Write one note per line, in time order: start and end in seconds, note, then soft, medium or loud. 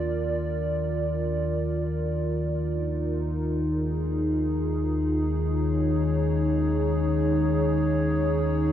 0.00 8.72 D#2 medium
0.00 8.72 D#3 medium
0.00 6.06 F4 medium
0.00 4.83 A#4 medium
0.00 2.70 D5 medium
2.70 8.72 D#4 medium
3.55 8.72 G#4 medium
5.49 8.72 C#5 medium